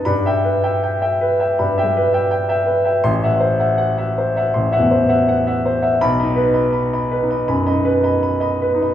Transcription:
<<
  \new Staff \with { instrumentName = "Grand piano" } { \time 4/4 \key e \minor \tempo 4 = 81 << { b''8 r2. r8 | c'''8 r2. r8 | b''8 r2. r8 | } \\ { r16 <e'' g''>16 b'16 <e'' g''>16 g''16 <e'' g''>16 b'16 <e'' g''>16 b''16 <e'' g''>16 b'16 <e'' g''>16 g''16 <e'' g''>16 b'16 <e'' g''>16 | r16 <e'' fis''>16 c''16 <e'' fis''>16 fis''16 <e'' fis''>16 c''16 <e'' fis''>16 c'''16 <e'' fis''>16 c''16 <e'' fis''>16 fis''16 <e'' fis''>16 c''16 <e'' fis''>16 | r16 <dis'' b''>16 b'16 <dis'' b''>16 b''16 <dis'' b''>16 b'16 <dis'' b''>16 b''16 <dis'' b''>16 b'16 <dis'' b''>16 b''16 <dis'' b''>16 b'16 <dis'' b''>16 | } >> }
  \new Staff \with { instrumentName = "Grand piano" } { \clef bass \time 4/4 \key e \minor g,2 \tuplet 3/2 { g,8 g4 } r4 | a,,2 \tuplet 3/2 { a,,8 e,4 } r4 | \tuplet 3/2 { b,,8 dis'4 r4 dis'8 fis,8 dis'4 r4 dis'8 } | }
>>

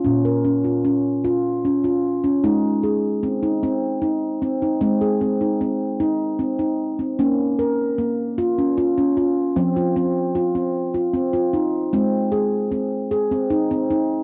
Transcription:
<<
  \new Staff \with { instrumentName = "Handpan" } { \time 6/8 \key bes \minor \tempo 4. = 51 des'16 bes'16 des'16 f'16 des'8 f'8 des'16 f'8 des'16 | ees'8 aes'8 c'16 ees'16 c'8 ees'8 c'16 ees'16 | c'16 aes'16 c'16 ees'16 c'8 ees'8 c'16 ees'8 c'16 | des'8 bes'8 bes8 f'16 des'16 f'16 des'16 f'8 |
c'16 f'16 c'8 f'16 c'8 f'16 c'16 f'16 ees'8 | c'8 aes'8 c'8 aes'16 c'16 ees'16 c'16 ees'8 | }
  \new Staff \with { instrumentName = "Handpan" } { \clef bass \time 6/8 \key bes \minor bes,2. | aes2. | aes2. | bes2. |
f2. | aes2. | }
>>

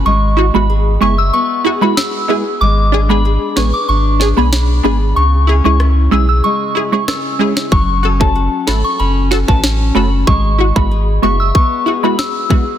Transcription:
<<
  \new Staff \with { instrumentName = "Synth bell" } { \time 4/4 \key e \mixolydian \tempo 4 = 94 cis'''8 r16 b''16 r8 cis'''16 e'''16 cis'''16 r8 b''16 e'''8. r16 | d'''8 r16 b''16 r8 cis'''16 d'''16 cis'''16 r8 b''16 r8 b''16 r16 | cis'''8 r16 cis'''16 r8 e'''16 e'''16 cis'''16 r8 cis'''16 e'''8. r16 | cis'''8 r16 a''16 r8 b''16 cis'''16 b''16 r8 a''16 r8 b''16 r16 |
cis'''8 r16 b''16 r8 cis'''16 e'''16 cis'''16 r8 b''16 e'''8. r16 | }
  \new Staff \with { instrumentName = "Nylon-string guitar" } { \time 4/4 \key e \mixolydian gis8 fis'8 gis'8 e''8 b8 gis'8 fis'8 gis'8 | gis8 d'8 gis'8 b'8 d'8 gis'8 d'8 gis'8 | cis8 cis'8 e'8 gis'8 gis8 e'8 cis'8 e'8 | fis8 cis'8 fis'8 a'8 cis'8 fis'8 cis'8 fis'8 |
gis8 fis'8 gis'8 e''8 b8 gis'8 fis'8 gis'8 | }
  \new Staff \with { instrumentName = "Synth stab" } { \time 4/4 \key e \mixolydian r8 <e' fis'>16 <gis b e' fis'>16 r8 <gis b e' gis'>16 r8. <e' fis'>16 <gis b e' fis'>16 r8 <gis b e' gis'>16 r16 | r8 <d' gis'>16 <gis b d' gis'>16 r8 <gis b d' gis'>16 r8. <d' gis'>16 <gis b d' gis'>16 r8 <gis b d' gis'>16 r16 | r8 <e' gis'>16 <gis cis' e' gis'>16 r8 <gis cis' e' gis'>16 r8. <e' gis'>16 <gis cis' e' gis'>16 r8 <gis cis' e' gis'>16 r16 | r8 <fis' a'>16 <a cis' fis' a'>16 r8 <a cis' fis' a'>16 r8. <fis' a'>16 <a cis' fis' b'>16 r8 <a cis' fis' a'>16 r16 |
r8 <e' fis'>16 <gis b e' fis'>16 r8 <gis b e' fis'>16 r8. <e' fis'>16 <gis b e' fis'>16 r8 <gis b e' fis'>16 r16 | }
  \new Staff \with { instrumentName = "Sub bass" } { \clef bass \time 4/4 \key e \mixolydian gis,,8. gis,,8. fis,,8 r2 | gis,,4~ gis,,16 r16 a,,16 r16 gis,,8. b,,8. gis,,8 | cis,8. cis,8. b,,8 r2 | fis,,4~ fis,,16 r16 gis,,16 r16 fis,,8. a,,8. fis,,8 |
gis,,8. gis,,8. fis,,8 r2 | }
  \new DrumStaff \with { instrumentName = "Drums" } \drummode { \time 4/4 r4 r4 r4 sn4 | r4 r8 sn8 r8 sn8 sn4 | r4 ss4 r4 <ss sn>8. sn16 | bd8. bd16 r8 sn8 r8 sn16 bd16 sn4 |
bd8. bd16 r4 bd4 sn8 bd8 | }
>>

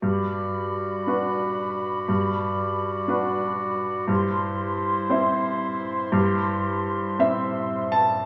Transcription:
<<
  \new Staff \with { instrumentName = "Flute section" } { \time 6/8 \key g \major \tempo 4. = 58 b''2.~ | b''2. | c'''2.~ | c'''2~ c'''8 r8 | }
  \new Staff \with { instrumentName = "Cor anglais" } { \time 6/8 \key g \major d''2.~ | d''2. | c''2.~ | c''2~ c''8 r8 | }
  \new Staff \with { instrumentName = "Clarinet" } { \time 6/8 \key g \major fis'2.~ | fis'2. | e'2.~ | e'2~ e'8 r8 | }
  \new Staff \with { instrumentName = "Grand piano" } { \time 6/8 \key g \major << { r2. | r2. | r2. | r4. e''4 a''8 | } \\ { g,4. <d' fis' b'>4. | g,4. <d' fis' b'>4. | g,4. <c' e' c''>4. | g,4. <c' e' c''>4. | } >> }
>>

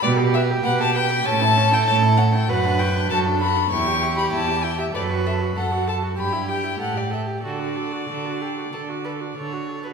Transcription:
<<
  \new Staff \with { instrumentName = "Violin" } { \time 4/4 \key d \major \tempo 4 = 98 d''8 e''8 fis''16 a''16 g''8 a''8. g''16 a''8 fis''16 g''16 | fis''8 g''8 a''8 b''8 cis'''8. b''16 a''8 g''16 e''16 | d''8 e''8 fis''8 a''8 b''8 g''8 fis''16 d''16 e''8 | d''2. r4 | }
  \new Staff \with { instrumentName = "Violin" } { \time 4/4 \key d \major g'2 a'2 | b'4 a'4 g'2 | b'4 a'4 g'2 | fis'4 fis'8 g'8 a'8 b'8 cis''8. b'16 | }
  \new Staff \with { instrumentName = "Viola" } { \time 4/4 \key d \major b'16 g'16 b'16 g'16 b'16 g'16 b'16 g'16 cis'16 e'16 cis'16 e'16 cis'16 e'16 cis'16 e'16 | fis'16 d'16 fis'16 d'16 fis'16 d'16 fis'16 d'16 e'16 g'16 e'16 g'16 e'16 g'16 e'16 g'16 | a'16 fis'16 a'16 fis'16 a'16 fis'16 a'16 fis'16 g'16 e'16 g'16 e'16 a'16 g'16 a'16 g'16 | a'16 fis'16 a'16 fis'16 a'16 fis'16 a'16 fis'16 a'16 fis'16 a'16 fis'16 a'16 fis'16 a'16 fis'16 | }
  \new Staff \with { instrumentName = "Cello" } { \clef bass \time 4/4 \key d \major b,4 b,4 a,4 a,4 | fis,4 fis,4 e,4 e,4 | fis,4 fis,4 g,4 a,4 | d4 d4 d4 d4 | }
>>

